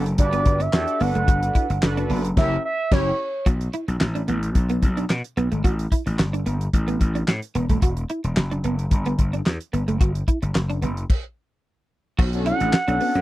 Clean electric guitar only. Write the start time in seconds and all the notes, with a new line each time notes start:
0.33 B3
0.46 muted clean electric guitar stroke
0.60 D4
0.73 muted clean electric guitar stroke
1.01 B3
1.15 A3
1.28 F#4
1.55 E4
1.70 muted clean electric guitar stroke
1.83 muted clean electric guitar stroke
1.97 D4
2.10 B3
3.46 F#4
3.74 E4
3.88 muted clean electric guitar stroke
4.01 muted clean electric guitar stroke
4.15 D4
4.28 B3
4.70 B3
4.83 muted clean electric guitar stroke
4.97 D4
5.10 muted clean electric guitar stroke
5.37 B3
5.52 A3
5.64 F#4
5.92 E4
6.06 muted clean electric guitar stroke
6.19 muted clean electric guitar stroke
6.33 D4
6.46 B3
6.88 B3
7.01 muted clean electric guitar stroke
7.15 D4
7.28 muted clean electric guitar stroke
7.55 B3
7.70 A3
7.83 F#4
8.10 E4
8.25 muted clean electric guitar stroke
8.37 muted clean electric guitar stroke
8.51 D4
8.64 B3
9.06 B3
9.19 muted clean electric guitar stroke
9.33 D4
9.46 muted clean electric guitar stroke
9.73 B3
9.88 A3
10.01 F#4
10.28 E4
10.42 muted clean electric guitar stroke
10.55 muted clean electric guitar stroke
10.70 D4
10.82 B3
12.19 F#4
12.46 E4
12.61 muted clean electric guitar stroke
12.73 muted clean electric guitar stroke
12.88 D4
13.01 B3